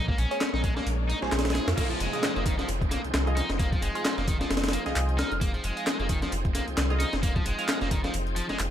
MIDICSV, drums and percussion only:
0, 0, Header, 1, 2, 480
1, 0, Start_track
1, 0, Key_signature, -4, "minor"
1, 0, Tempo, 454545
1, 1874, Time_signature, 4, 2, 24, 8
1, 9192, End_track
2, 0, Start_track
2, 0, Title_t, "Drums"
2, 89, Note_on_c, 9, 36, 100
2, 194, Note_on_c, 9, 42, 68
2, 195, Note_off_c, 9, 36, 0
2, 299, Note_off_c, 9, 42, 0
2, 331, Note_on_c, 9, 42, 44
2, 432, Note_on_c, 9, 39, 101
2, 433, Note_off_c, 9, 42, 0
2, 433, Note_on_c, 9, 38, 119
2, 433, Note_on_c, 9, 42, 89
2, 538, Note_off_c, 9, 39, 0
2, 539, Note_off_c, 9, 38, 0
2, 539, Note_off_c, 9, 42, 0
2, 569, Note_on_c, 9, 38, 51
2, 674, Note_on_c, 9, 36, 94
2, 674, Note_on_c, 9, 42, 69
2, 675, Note_off_c, 9, 38, 0
2, 779, Note_off_c, 9, 36, 0
2, 779, Note_off_c, 9, 42, 0
2, 811, Note_on_c, 9, 38, 55
2, 915, Note_on_c, 9, 42, 90
2, 917, Note_off_c, 9, 38, 0
2, 1021, Note_off_c, 9, 42, 0
2, 1157, Note_on_c, 9, 42, 71
2, 1263, Note_off_c, 9, 42, 0
2, 1293, Note_on_c, 9, 38, 45
2, 1394, Note_on_c, 9, 39, 104
2, 1396, Note_off_c, 9, 38, 0
2, 1396, Note_on_c, 9, 38, 91
2, 1396, Note_on_c, 9, 42, 67
2, 1465, Note_off_c, 9, 38, 0
2, 1465, Note_off_c, 9, 42, 0
2, 1465, Note_on_c, 9, 38, 89
2, 1465, Note_on_c, 9, 42, 71
2, 1500, Note_off_c, 9, 39, 0
2, 1532, Note_off_c, 9, 38, 0
2, 1532, Note_off_c, 9, 42, 0
2, 1532, Note_on_c, 9, 38, 88
2, 1532, Note_on_c, 9, 42, 68
2, 1585, Note_off_c, 9, 38, 0
2, 1585, Note_off_c, 9, 42, 0
2, 1585, Note_on_c, 9, 38, 88
2, 1585, Note_on_c, 9, 42, 67
2, 1636, Note_off_c, 9, 38, 0
2, 1636, Note_off_c, 9, 42, 0
2, 1636, Note_on_c, 9, 38, 106
2, 1636, Note_on_c, 9, 42, 80
2, 1742, Note_off_c, 9, 38, 0
2, 1742, Note_off_c, 9, 42, 0
2, 1772, Note_on_c, 9, 38, 108
2, 1772, Note_on_c, 9, 42, 83
2, 1875, Note_off_c, 9, 42, 0
2, 1875, Note_on_c, 9, 42, 44
2, 1876, Note_off_c, 9, 42, 0
2, 1876, Note_on_c, 9, 36, 115
2, 1876, Note_on_c, 9, 42, 90
2, 1876, Note_on_c, 9, 49, 92
2, 1878, Note_off_c, 9, 38, 0
2, 1981, Note_off_c, 9, 36, 0
2, 1982, Note_off_c, 9, 42, 0
2, 1982, Note_off_c, 9, 49, 0
2, 2012, Note_on_c, 9, 42, 23
2, 2115, Note_off_c, 9, 42, 0
2, 2115, Note_on_c, 9, 42, 69
2, 2117, Note_off_c, 9, 42, 0
2, 2117, Note_on_c, 9, 42, 76
2, 2222, Note_off_c, 9, 42, 0
2, 2253, Note_on_c, 9, 42, 45
2, 2255, Note_off_c, 9, 42, 0
2, 2255, Note_on_c, 9, 42, 34
2, 2354, Note_off_c, 9, 42, 0
2, 2354, Note_on_c, 9, 38, 121
2, 2354, Note_on_c, 9, 42, 90
2, 2360, Note_off_c, 9, 42, 0
2, 2360, Note_on_c, 9, 39, 108
2, 2360, Note_on_c, 9, 42, 45
2, 2460, Note_off_c, 9, 38, 0
2, 2465, Note_off_c, 9, 39, 0
2, 2465, Note_off_c, 9, 42, 0
2, 2496, Note_on_c, 9, 42, 23
2, 2594, Note_off_c, 9, 42, 0
2, 2594, Note_on_c, 9, 42, 70
2, 2596, Note_on_c, 9, 36, 98
2, 2600, Note_off_c, 9, 42, 0
2, 2600, Note_on_c, 9, 42, 78
2, 2702, Note_off_c, 9, 36, 0
2, 2706, Note_off_c, 9, 42, 0
2, 2735, Note_on_c, 9, 38, 50
2, 2735, Note_on_c, 9, 42, 34
2, 2836, Note_off_c, 9, 42, 0
2, 2836, Note_on_c, 9, 42, 88
2, 2838, Note_off_c, 9, 42, 0
2, 2838, Note_on_c, 9, 42, 45
2, 2841, Note_off_c, 9, 38, 0
2, 2944, Note_off_c, 9, 42, 0
2, 2973, Note_on_c, 9, 36, 96
2, 2978, Note_on_c, 9, 42, 22
2, 3075, Note_off_c, 9, 42, 0
2, 3075, Note_on_c, 9, 38, 38
2, 3075, Note_on_c, 9, 42, 69
2, 3079, Note_off_c, 9, 36, 0
2, 3080, Note_off_c, 9, 42, 0
2, 3080, Note_on_c, 9, 42, 78
2, 3181, Note_off_c, 9, 38, 0
2, 3186, Note_off_c, 9, 42, 0
2, 3215, Note_on_c, 9, 42, 32
2, 3314, Note_off_c, 9, 42, 0
2, 3314, Note_on_c, 9, 38, 123
2, 3314, Note_on_c, 9, 42, 90
2, 3319, Note_off_c, 9, 42, 0
2, 3319, Note_on_c, 9, 39, 111
2, 3319, Note_on_c, 9, 42, 46
2, 3420, Note_off_c, 9, 38, 0
2, 3424, Note_off_c, 9, 39, 0
2, 3424, Note_off_c, 9, 42, 0
2, 3455, Note_on_c, 9, 42, 23
2, 3557, Note_off_c, 9, 42, 0
2, 3557, Note_on_c, 9, 38, 43
2, 3557, Note_on_c, 9, 42, 70
2, 3558, Note_off_c, 9, 42, 0
2, 3558, Note_on_c, 9, 42, 77
2, 3662, Note_off_c, 9, 38, 0
2, 3663, Note_off_c, 9, 42, 0
2, 3692, Note_on_c, 9, 38, 59
2, 3695, Note_on_c, 9, 42, 34
2, 3796, Note_off_c, 9, 42, 0
2, 3796, Note_on_c, 9, 42, 94
2, 3797, Note_off_c, 9, 38, 0
2, 3797, Note_on_c, 9, 36, 111
2, 3800, Note_off_c, 9, 42, 0
2, 3800, Note_on_c, 9, 42, 44
2, 3902, Note_off_c, 9, 36, 0
2, 3906, Note_off_c, 9, 42, 0
2, 3933, Note_on_c, 9, 36, 101
2, 3935, Note_on_c, 9, 42, 23
2, 4038, Note_off_c, 9, 42, 0
2, 4038, Note_on_c, 9, 42, 69
2, 4039, Note_off_c, 9, 36, 0
2, 4144, Note_off_c, 9, 42, 0
2, 4175, Note_on_c, 9, 42, 34
2, 4176, Note_off_c, 9, 42, 0
2, 4176, Note_on_c, 9, 42, 44
2, 4277, Note_off_c, 9, 42, 0
2, 4277, Note_on_c, 9, 38, 119
2, 4277, Note_on_c, 9, 42, 92
2, 4278, Note_off_c, 9, 42, 0
2, 4278, Note_on_c, 9, 39, 112
2, 4278, Note_on_c, 9, 42, 46
2, 4383, Note_off_c, 9, 38, 0
2, 4384, Note_off_c, 9, 39, 0
2, 4384, Note_off_c, 9, 42, 0
2, 4415, Note_on_c, 9, 38, 51
2, 4415, Note_on_c, 9, 42, 22
2, 4516, Note_off_c, 9, 42, 0
2, 4516, Note_on_c, 9, 42, 72
2, 4517, Note_on_c, 9, 36, 97
2, 4520, Note_off_c, 9, 38, 0
2, 4520, Note_off_c, 9, 42, 0
2, 4520, Note_on_c, 9, 42, 77
2, 4622, Note_off_c, 9, 36, 0
2, 4625, Note_off_c, 9, 42, 0
2, 4655, Note_on_c, 9, 38, 55
2, 4656, Note_on_c, 9, 42, 34
2, 4757, Note_off_c, 9, 42, 0
2, 4757, Note_on_c, 9, 42, 45
2, 4758, Note_off_c, 9, 38, 0
2, 4758, Note_off_c, 9, 42, 0
2, 4758, Note_on_c, 9, 38, 91
2, 4758, Note_on_c, 9, 42, 68
2, 4827, Note_off_c, 9, 38, 0
2, 4827, Note_off_c, 9, 42, 0
2, 4827, Note_on_c, 9, 38, 91
2, 4827, Note_on_c, 9, 42, 68
2, 4893, Note_off_c, 9, 42, 0
2, 4893, Note_on_c, 9, 42, 23
2, 4896, Note_off_c, 9, 38, 0
2, 4896, Note_off_c, 9, 42, 0
2, 4896, Note_on_c, 9, 38, 91
2, 4896, Note_on_c, 9, 42, 69
2, 4947, Note_off_c, 9, 38, 0
2, 4947, Note_off_c, 9, 42, 0
2, 4947, Note_on_c, 9, 38, 92
2, 4947, Note_on_c, 9, 42, 69
2, 4997, Note_off_c, 9, 42, 0
2, 4997, Note_on_c, 9, 42, 78
2, 5000, Note_off_c, 9, 42, 0
2, 5000, Note_on_c, 9, 42, 68
2, 5052, Note_off_c, 9, 38, 0
2, 5106, Note_off_c, 9, 42, 0
2, 5132, Note_on_c, 9, 42, 33
2, 5136, Note_on_c, 9, 38, 45
2, 5237, Note_off_c, 9, 42, 0
2, 5237, Note_on_c, 9, 39, 115
2, 5237, Note_on_c, 9, 42, 45
2, 5240, Note_off_c, 9, 42, 0
2, 5240, Note_on_c, 9, 42, 91
2, 5242, Note_off_c, 9, 38, 0
2, 5343, Note_off_c, 9, 39, 0
2, 5346, Note_off_c, 9, 42, 0
2, 5373, Note_on_c, 9, 42, 23
2, 5477, Note_off_c, 9, 42, 0
2, 5477, Note_on_c, 9, 42, 79
2, 5480, Note_off_c, 9, 42, 0
2, 5480, Note_on_c, 9, 38, 119
2, 5480, Note_on_c, 9, 42, 70
2, 5586, Note_off_c, 9, 38, 0
2, 5586, Note_off_c, 9, 42, 0
2, 5614, Note_on_c, 9, 42, 34
2, 5717, Note_off_c, 9, 42, 0
2, 5717, Note_on_c, 9, 36, 114
2, 5717, Note_on_c, 9, 42, 44
2, 5718, Note_off_c, 9, 42, 0
2, 5718, Note_on_c, 9, 42, 91
2, 5823, Note_off_c, 9, 36, 0
2, 5823, Note_off_c, 9, 42, 0
2, 5852, Note_on_c, 9, 42, 22
2, 5954, Note_off_c, 9, 42, 0
2, 5954, Note_on_c, 9, 42, 75
2, 5958, Note_off_c, 9, 42, 0
2, 5958, Note_on_c, 9, 42, 70
2, 6063, Note_off_c, 9, 42, 0
2, 6092, Note_on_c, 9, 42, 34
2, 6095, Note_off_c, 9, 42, 0
2, 6095, Note_on_c, 9, 42, 44
2, 6195, Note_off_c, 9, 42, 0
2, 6195, Note_on_c, 9, 39, 114
2, 6195, Note_on_c, 9, 42, 45
2, 6197, Note_off_c, 9, 42, 0
2, 6197, Note_on_c, 9, 38, 119
2, 6197, Note_on_c, 9, 42, 93
2, 6301, Note_off_c, 9, 39, 0
2, 6302, Note_off_c, 9, 38, 0
2, 6302, Note_off_c, 9, 42, 0
2, 6332, Note_on_c, 9, 42, 22
2, 6433, Note_off_c, 9, 42, 0
2, 6433, Note_on_c, 9, 42, 77
2, 6436, Note_on_c, 9, 36, 98
2, 6437, Note_off_c, 9, 42, 0
2, 6437, Note_on_c, 9, 42, 71
2, 6541, Note_off_c, 9, 36, 0
2, 6543, Note_off_c, 9, 42, 0
2, 6571, Note_on_c, 9, 42, 34
2, 6573, Note_on_c, 9, 38, 50
2, 6675, Note_off_c, 9, 42, 0
2, 6675, Note_on_c, 9, 42, 44
2, 6677, Note_off_c, 9, 42, 0
2, 6677, Note_on_c, 9, 42, 88
2, 6679, Note_off_c, 9, 38, 0
2, 6783, Note_off_c, 9, 42, 0
2, 6810, Note_on_c, 9, 42, 22
2, 6812, Note_on_c, 9, 36, 99
2, 6915, Note_off_c, 9, 42, 0
2, 6915, Note_on_c, 9, 42, 78
2, 6917, Note_off_c, 9, 42, 0
2, 6917, Note_on_c, 9, 38, 39
2, 6917, Note_on_c, 9, 42, 71
2, 6918, Note_off_c, 9, 36, 0
2, 7023, Note_off_c, 9, 38, 0
2, 7023, Note_off_c, 9, 42, 0
2, 7051, Note_on_c, 9, 42, 31
2, 7154, Note_off_c, 9, 42, 0
2, 7154, Note_on_c, 9, 39, 113
2, 7154, Note_on_c, 9, 42, 45
2, 7155, Note_off_c, 9, 42, 0
2, 7155, Note_on_c, 9, 38, 123
2, 7155, Note_on_c, 9, 42, 92
2, 7260, Note_off_c, 9, 38, 0
2, 7260, Note_off_c, 9, 39, 0
2, 7260, Note_off_c, 9, 42, 0
2, 7290, Note_on_c, 9, 42, 23
2, 7392, Note_off_c, 9, 42, 0
2, 7392, Note_on_c, 9, 42, 78
2, 7395, Note_off_c, 9, 42, 0
2, 7395, Note_on_c, 9, 38, 42
2, 7395, Note_on_c, 9, 42, 71
2, 7500, Note_off_c, 9, 38, 0
2, 7500, Note_off_c, 9, 42, 0
2, 7528, Note_on_c, 9, 42, 34
2, 7532, Note_on_c, 9, 38, 60
2, 7634, Note_off_c, 9, 42, 0
2, 7634, Note_on_c, 9, 42, 41
2, 7635, Note_on_c, 9, 36, 112
2, 7636, Note_off_c, 9, 42, 0
2, 7636, Note_on_c, 9, 42, 92
2, 7638, Note_off_c, 9, 38, 0
2, 7740, Note_off_c, 9, 36, 0
2, 7741, Note_off_c, 9, 42, 0
2, 7771, Note_on_c, 9, 42, 22
2, 7772, Note_on_c, 9, 36, 100
2, 7875, Note_off_c, 9, 42, 0
2, 7875, Note_on_c, 9, 42, 74
2, 7877, Note_off_c, 9, 42, 0
2, 7877, Note_on_c, 9, 42, 70
2, 7878, Note_off_c, 9, 36, 0
2, 7982, Note_off_c, 9, 42, 0
2, 8011, Note_on_c, 9, 42, 31
2, 8013, Note_off_c, 9, 42, 0
2, 8013, Note_on_c, 9, 42, 46
2, 8113, Note_off_c, 9, 42, 0
2, 8113, Note_on_c, 9, 39, 112
2, 8113, Note_on_c, 9, 42, 42
2, 8117, Note_off_c, 9, 42, 0
2, 8117, Note_on_c, 9, 38, 120
2, 8117, Note_on_c, 9, 42, 91
2, 8219, Note_off_c, 9, 39, 0
2, 8222, Note_off_c, 9, 38, 0
2, 8222, Note_off_c, 9, 42, 0
2, 8249, Note_on_c, 9, 42, 21
2, 8254, Note_on_c, 9, 38, 52
2, 8354, Note_off_c, 9, 42, 0
2, 8354, Note_on_c, 9, 42, 72
2, 8355, Note_off_c, 9, 42, 0
2, 8355, Note_on_c, 9, 42, 72
2, 8356, Note_on_c, 9, 36, 96
2, 8360, Note_off_c, 9, 38, 0
2, 8461, Note_off_c, 9, 36, 0
2, 8461, Note_off_c, 9, 42, 0
2, 8491, Note_on_c, 9, 42, 33
2, 8495, Note_on_c, 9, 38, 55
2, 8593, Note_off_c, 9, 42, 0
2, 8593, Note_on_c, 9, 42, 42
2, 8595, Note_off_c, 9, 42, 0
2, 8595, Note_on_c, 9, 42, 90
2, 8601, Note_off_c, 9, 38, 0
2, 8700, Note_off_c, 9, 42, 0
2, 8731, Note_on_c, 9, 42, 22
2, 8831, Note_off_c, 9, 42, 0
2, 8831, Note_on_c, 9, 42, 76
2, 8836, Note_off_c, 9, 42, 0
2, 8836, Note_on_c, 9, 42, 69
2, 8942, Note_off_c, 9, 42, 0
2, 8969, Note_on_c, 9, 42, 31
2, 8974, Note_on_c, 9, 38, 45
2, 9072, Note_off_c, 9, 42, 0
2, 9072, Note_on_c, 9, 39, 114
2, 9072, Note_on_c, 9, 42, 44
2, 9076, Note_off_c, 9, 42, 0
2, 9076, Note_on_c, 9, 42, 92
2, 9079, Note_off_c, 9, 38, 0
2, 9177, Note_off_c, 9, 39, 0
2, 9182, Note_off_c, 9, 42, 0
2, 9192, End_track
0, 0, End_of_file